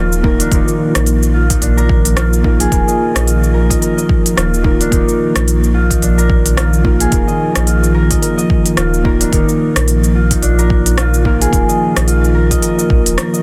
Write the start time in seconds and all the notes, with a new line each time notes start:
Already playing: D#1 D#3 F3 A#3 D#4 F4 G#4 A#4 D#5
0.12 shaker
0.23 A#3 D#4 F4 A#4, kick
0.40 D4, open hi-hat, shaker
0.50 D#1 D#3 A#3 D#4 F4, kick, open hi-hat, shaker
0.54 A#4
0.68 shaker
0.95 A#1, cross-stick, open hi-hat, shaker
1.06 open hi-hat, shaker
1.23 shaker
1.34 F4
1.50 D#4, kick, open hi-hat, shaker
1.61 A#1 D4, open hi-hat, shaker
1.77 A#4, shaker
1.89 kick
2.05 open hi-hat, shaker
2.16 F4, cross-stick, open hi-hat, shaker
2.33 shaker
2.43 A#3 D#4 F4 A#4, kick
2.60 G#4, open hi-hat, shaker
2.69 D#1 A#3 D#4 F4, kick, open hi-hat, shaker
2.73 A#4
2.87 D#5, shaker
3.15 A#1 D#5, cross-stick, open hi-hat, shaker
3.26 F4, open hi-hat, shaker
3.43 shaker
3.54 A#4
3.70 D#5, kick, open hi-hat, shaker
3.81 A#4, open hi-hat, shaker
3.97 D#5, shaker
4.09 kick
4.26 open hi-hat, shaker
4.36 D#1 F4, cross-stick, open hi-hat, shaker
4.54 shaker
4.63 A#3 D#4 F4 A#4, kick
4.80 D4, open hi-hat, shaker
4.90 D#1 D#3 A#3 D#4 F4 A#4, kick, open hi-hat, shaker
5.09 shaker
5.36 A#1, cross-stick, open hi-hat, shaker
5.48 open hi-hat, shaker
5.64 shaker
5.74 F4
5.90 D#4, kick, open hi-hat, shaker
6.02 A#1 D4, open hi-hat, shaker
6.18 A#4, shaker
6.30 kick
6.46 open hi-hat, shaker
6.56 F4, cross-stick, open hi-hat, shaker
6.73 shaker
6.84 A#3 D#4 F4 A#4, kick
7.00 G#4, open hi-hat, shaker
7.10 D#1 A#3 D#4 F4 A#4, kick, open hi-hat, shaker
7.27 D#5, shaker
7.55 A#1 D#5, cross-stick, open hi-hat, shaker
7.67 F4, open hi-hat, shaker
7.84 shaker
7.94 A#4
8.10 D#5, kick, open hi-hat, shaker
8.22 A#4, open hi-hat, shaker
8.37 D#5, shaker
8.50 kick
8.66 open hi-hat, shaker
8.77 D#1 F4, cross-stick, open hi-hat, shaker
8.94 shaker
9.04 A#3 D#4 F4 A#4, kick
9.20 D4, open hi-hat, shaker
9.30 D#1 D#3 A#3 D#4 F4 A#4, kick, open hi-hat, shaker
9.49 shaker
9.76 A#1, cross-stick, open hi-hat, shaker
9.88 open hi-hat, shaker
10.04 shaker
10.15 F4
10.31 D#4, kick, open hi-hat, shaker
10.42 A#1 D4, open hi-hat, shaker
10.59 A#4, shaker
10.70 kick
10.86 open hi-hat, shaker
10.98 F4, cross-stick, open hi-hat, shaker
11.14 shaker
11.24 A#3 D#4 F4 A#4, kick
11.41 G#4, open hi-hat, shaker
11.51 D#1 A#3 D#4 F4 A#4, kick, open hi-hat, shaker
11.68 D#5, shaker
11.96 A#1 D#5, cross-stick, open hi-hat, shaker
12.07 F4, open hi-hat, shaker
12.24 shaker
12.35 A#4
12.51 D#5, kick, open hi-hat, shaker
12.62 A#4, open hi-hat, shaker
12.78 D#5, shaker
12.90 A#1, kick
13.06 D#1, open hi-hat, shaker
13.17 A#4, cross-stick, open hi-hat, shaker
13.33 D#5, shaker